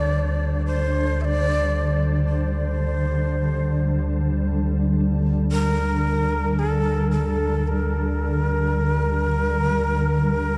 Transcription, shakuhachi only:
Already playing: D5
0.66 C5
1.21 D5 E5
2.28 C5
5.51 A#4
6.59 A4
7.11 A4
7.68 A#4

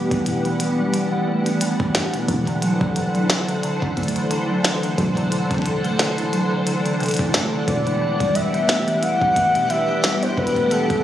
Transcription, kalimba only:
Already playing: E3
0.11 E3
0.26 B2
0.45 E3
0.60 E3
0.79 G3
0.94 E3
1.12 E3
1.27 A3
1.46 E3
1.61 E3
1.80 E3
1.95 E3
2.14 B2
2.29 D3
2.47 D3
2.62 F#3
2.81 D3
2.96 D3
3.15 F#3
3.30 D3
3.48 D3
3.63 D3
3.82 D3
3.97 A3
4.16 D3
4.31 D3
4.50 F#3
4.64 D3
4.83 D3
4.98 F#3
5.17 D3
5.32 D3
5.51 D3
5.66 D3
5.84 A3
5.99 D3
6.18 D3
6.33 F#3
6.52 D3
6.67 D3
6.86 D3
7.00 C3
7.19 C3
7.34 A3
7.53 D3
7.68 B2
7.87 E3
8.02 E3
8.20 G3
8.35 E3
8.54 E3
8.69 A3
8.88 E3
9.03 E3
9.21 E3
9.36 E3
9.55 B2
9.70 E3
9.89 E3
10.04 G3
10.23 E3
10.37 E3
10.56 A3
10.71 E3
10.90 E3

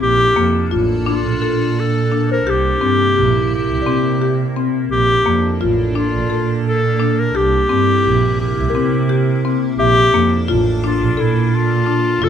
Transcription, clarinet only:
0.02 G4
1.09 F4
1.80 A4
2.32 A#4
2.50 G4
3.55 G4
4.91 G4
5.97 F4
6.67 A4
7.20 A#4
7.36 G4
8.40 G4
9.79 G4
10.86 F4
11.20 E4
11.55 F4
12.24 A4

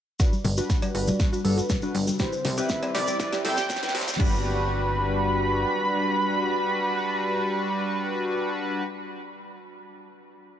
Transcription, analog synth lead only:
0.20 D5
0.58 F#5
0.95 D5
1.45 B4
2.20 C5
2.58 E5
2.95 D5
3.45 G5
4.20 B5

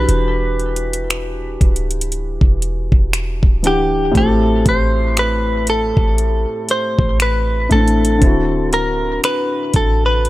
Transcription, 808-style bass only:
0.09 E1
1.61 D1
2.41 E1
2.92 E1
3.43 D1
4.15 A1
4.66 A1
5.97 A1
6.99 A1
7.71 A1
8.22 D1
9.74 A1

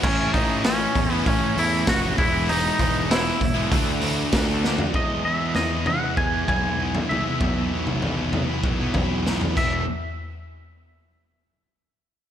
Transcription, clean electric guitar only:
0.03 C#4
0.34 D#4
0.65 C#4
1.13 B3
1.27 C#4
1.59 E4
1.89 F#4
2.18 E4
2.49 D#4
3.11 E4
4.96 D#5
5.25 E5
5.56 D#5
5.87 F#5
6.17 G#5
6.48 G#5
7.09 E5
9.57 E5

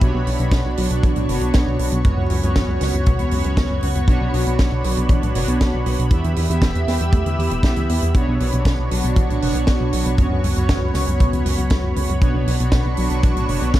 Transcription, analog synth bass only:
0.01 B1
0.14 B1
0.27 B1
0.39 B1
0.51 B1
0.65 B1
0.78 B1
0.90 B1
1.03 B1
1.16 B1
1.28 F#1
1.41 B1
1.54 B1
1.67 B1
1.79 B1
1.92 B1
2.05 C#2
2.17 C#2
2.30 C#2
2.43 C#2
2.56 A1
2.68 C#2
2.81 C#2
2.94 C#2
3.07 C#2
3.19 C#2
3.32 C#2
3.45 C#2
3.57 C#2
3.70 C#2
3.83 C#2
3.95 C#2
4.08 B1
4.21 B1
4.33 B1
4.46 B1
4.59 B1
4.72 B1
4.84 B1
4.97 B1
5.09 B1
5.22 B1
5.35 F#1
5.48 B1
5.61 B1
5.73 B1
5.86 B1
5.99 B1
6.11 E2
6.24 E2
6.37 E2
6.50 E2
6.62 E1
6.75 E2
6.88 E2
7.00 E2
7.13 E2
7.26 E2
7.39 E2
7.51 E1
7.63 B1
7.77 D2
7.89 E2
8.02 E2
8.15 B1
8.28 B1
8.40 B1
8.53 B1
8.65 B1
8.79 B1
8.91 B1
9.04 B1
9.16 B1
9.29 B1
9.42 F#1
9.55 B1
9.68 B1
9.80 B1
9.93 B1
10.06 B1
10.18 C#2
10.31 C#2
10.44 C#2
10.56 C#2
10.69 A1
10.82 C#2
10.95 C#2
11.07 C#2
11.20 C#2
11.33 C#2
11.45 C#2
11.58 C#2
11.71 C#2
11.84 C#2
11.96 C#2
12.09 C#2
12.22 B1
12.34 B1
12.47 B1
12.60 B1
12.72 B1
12.85 B1
12.98 B1
13.11 B1
13.23 B1
13.36 B1
13.49 F#1
13.61 B1
13.74 B1

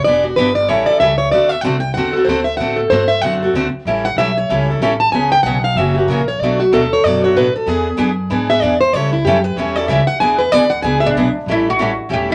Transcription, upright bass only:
0.05 E1
0.37 G1
0.69 A1
0.89 muted upright bass stroke
1.00 C#2
1.32 D2
1.63 C2
1.95 E2
2.27 D2
2.59 A2
2.91 G2
3.22 F#2
3.53 D2
3.73 muted upright bass stroke
3.85 A1
4.16 B1
4.49 C#2
4.80 A1
5.12 C#2
5.43 B1
5.76 F#1
6.07 A#1
6.40 B1
6.72 D2
7.04 F#2
7.35 A2
7.54 muted upright bass stroke
7.66 E2
7.98 F#2
8.31 G#2
8.62 E2
8.93 C#2
9.25 F#2
9.56 E2
9.88 C#2
10.08 muted upright bass stroke
10.20 E2
10.52 D2
10.82 C#2
11.15 B1
11.35 muted upright bass stroke
11.46 A1
12.10 E1

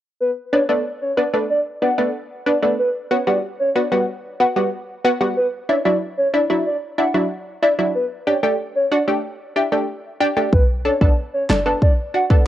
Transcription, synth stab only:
0.53 B3 D4
0.69 A3 B3 D4
1.17 B3 D4
1.33 A3 B3 D4
1.82 B3 D4
1.98 A3 B3 D4
2.46 B3 D4
2.62 A3 B3 D4
3.11 B3 F#4
3.27 G3 B3 F#4
3.75 B3 F#4
3.92 G3 B3 F#4
4.40 B3 F#4
4.56 G3 B3 F#4
5.04 B3 F#4
5.21 G3 B3 F#4
5.69 D4 E4
5.85 F#3 D4 E4
6.34 D4 E4
6.50 F#3 D4 E4
6.98 D4 E4
7.14 F#3 D4 E4
7.62 D4 E4
7.79 F#3 D4 E4
8.27 D4 G4
8.43 A3 D4 G4
8.92 D4 F#4
9.08 A3 D4 G4
9.56 D4 G4
9.72 A3 D4 G4
10.20 D4 G4
10.37 A3 D4 G4
10.85 D4 A4
11.01 B3 D4 A4
11.50 D4 A4
11.66 B3 D4 A4
12.14 D4 F#4
12.30 B3 D4 A4

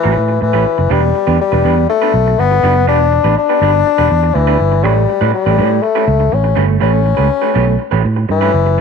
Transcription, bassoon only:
Already playing: E3
0.42 E3
0.92 G3
1.41 G3
1.90 A3
2.39 B3
2.88 D4
3.38 D4
4.35 E3
4.84 G3
5.34 G3
5.83 A3
6.34 C#4
6.83 C#4
8.31 E3

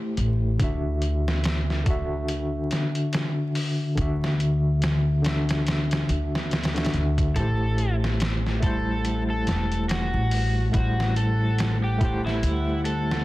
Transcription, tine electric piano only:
Already playing: A3 E4 G4 C5
0.58 D3 D4 F#4
0.64 E5
1.84 D3 D4
1.88 F#4 E5
3.95 D3 D4
3.99 F#4 E5
5.22 D3 D4
5.26 F#4 E5
6.75 D3 D4 F#4 E5
7.34 A3 E4
7.38 G4 C5
8.60 A3 E4
8.64 G3 C5
10.72 A3 E4
10.76 G3 C5
11.98 A3 E4
12.03 G4 C5

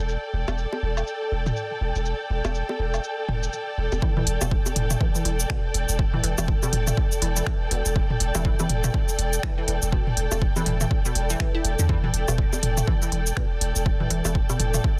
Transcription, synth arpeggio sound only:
4.02 E3
4.17 E3
4.41 B2
5.01 E3
5.15 E3
5.25 E3
5.50 B2
6.14 E3
6.24 E3
6.38 E3
6.63 B2
7.22 E3
7.36 E3
7.71 B2
8.35 E3
8.45 E3
8.60 E3
8.84 B2
9.43 E3
9.58 E3
9.68 E3
9.93 B2
10.56 E3
10.66 E3
10.81 E3
11.05 B2
11.30 E3
11.40 E3
11.55 E4
11.79 D3
11.89 E3
12.04 E3
12.28 B2
12.87 E3
13.02 E3
13.12 E3
13.37 B2
14.00 E3
14.11 E3
14.25 E3
14.50 B2

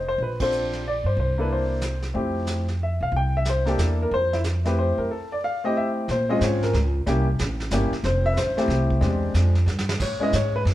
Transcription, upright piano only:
0.08 C5
0.23 B4
0.40 C4 D4 F4 A4 C5
0.88 D5
1.06 C5
1.20 C5
1.38 A#3 D4 E4 A4 B4
1.52 C5
2.14 A3 C4 E4 G4
2.83 E5
3.03 F5
3.17 G5
3.37 E5
3.50 C5
3.66 A#3 D4 E4 G4 A4
3.81 A4
4.02 A#4
4.14 C5
4.33 E4
4.65 A3 C4 E4 G4 B4
4.79 C5
4.98 A#4
5.11 A4
5.32 D5
5.44 F5
5.64 A3 C4 E4 G4 D#5
5.77 E5
6.11 C5
6.29 G#3 C4 C#4 F4 D#5
6.39 C5
6.44 C#5
6.63 A#4
7.06 A#3 C#4 E4 G4
7.72 A#3 C#4 E4 G4
8.05 C5
8.26 E5
8.33 B4
8.38 C5
8.57 A3 C4 E4 G4 A4
9.01 G#3 C4 D4 G4
10.02 C#5
10.20 G#3 B3 C#4 E4 D#5
10.35 C#5
10.56 B4

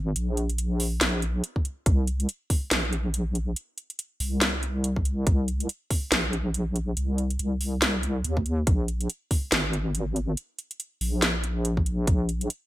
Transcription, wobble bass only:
Already playing: G#1
0.16 A#1
1.01 A#1
1.86 C2
2.71 A#1
4.20 C2
5.27 C2
6.12 A#1
6.97 C2
7.39 C2
8.25 D#2
8.67 A#1
9.52 G#1
11.01 A#1
12.07 A#1

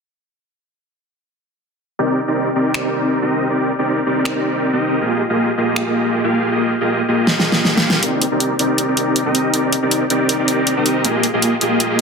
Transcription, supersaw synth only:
1.99 C4 D#4 G4 A#4 D5
2.28 C4 D#4 G4 A#4 D5
2.55 C4 D#4 G4 A#4 D5
2.84 C4 D#4 G4 A#4 D5
3.22 C4 D#4 G4 A#4 D#5
3.50 C4 D#4 G4 A#4 D5
3.79 C4 D#4 G4 A#4 D5
4.06 C4 D#4 G4 A#4 D5
4.35 C4 D#4 G4 A#4 D5
4.73 C4 D#4 G4 A#4 D#5
5.01 A#3 F4 G4 G#4 D#5
5.30 A#3 F4 G4 G#4 D#5
5.57 A#3 F4 G4 G#4 D#5
5.86 A#3 F4 G4 G#4 D#5
6.24 A#3 F4 G4 G#4 F5
6.52 A#3 F4 G4 G#4 D#5
6.81 A#3 F4 G4 G#4 D#5
7.08 A#3 F4 G4 G#4 D#5
7.37 A#3 F4 G4 G#4 D#5
7.75 A#3 F4 G4 G#4 F5
8.03 C4 D#4 G4 A#4 D5
8.32 C4 D#4 G4 A#4 D5
8.59 C4 D#4 G4 A#4 D5
8.88 C4 D#4 G4 A#4 D5
9.26 C4 D#4 G4 A#4 D#5
9.54 C4 D#4 G4 A#4 D5
9.83 C4 D#4 G4 A#4 D5
10.10 C4 D#4 G4 A#4 D5
10.39 C4 D#4 G4 A#4 D5
10.77 C4 D#4 G4 A#4 D#5
11.05 A#3 F4 G4 G#4 D#5
11.34 A#3 F4 G4 G#4 D#5
11.61 A#3 F4 G4 G#4 D#5
11.90 A#3 F4 G4 G#4 D#5

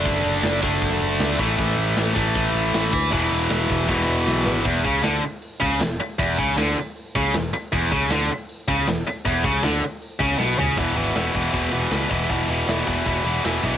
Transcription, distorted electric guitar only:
Already playing: D3 A3 D4
0.62 D3 A3 D4
1.38 A2 E3 A3
2.15 A2 E3 A3
3.11 E2 B2 E3
3.87 E2 B2 E3
4.65 E2
4.84 C#3
5.03 D3
5.22 muted distorted electric guitar stroke
5.60 C#3
5.80 E2
6.00 muted distorted electric guitar stroke
6.19 E2
6.38 C#3
6.58 D3
6.78 muted distorted electric guitar stroke
7.16 C#3
7.35 E2
7.53 muted distorted electric guitar stroke
7.72 E2
7.91 C#3
8.11 D3
8.31 muted distorted electric guitar stroke
8.68 C#3
8.87 E2
9.07 muted distorted electric guitar stroke
9.25 E2
9.44 C#3
9.64 D3
9.82 muted distorted electric guitar stroke
10.20 C#3
10.38 B2
10.59 C#3
10.78 E2 B2 E3
10.96 E2 B2 E3
11.15 E2 B2 E3
11.34 E2 B2 E3
11.53 E2 B2 E3
11.72 E2 B2 E3
11.91 E2 B2 E3
12.10 E2 B2 E3
12.30 E2 B2 E3
12.49 E2 B2 E3
12.68 E2 B2 E3
12.87 E2 B2 E3
13.05 E2 B2 E3
13.25 E2 B2 E3
13.44 E2 B2 E3
13.63 E2 B2 E3

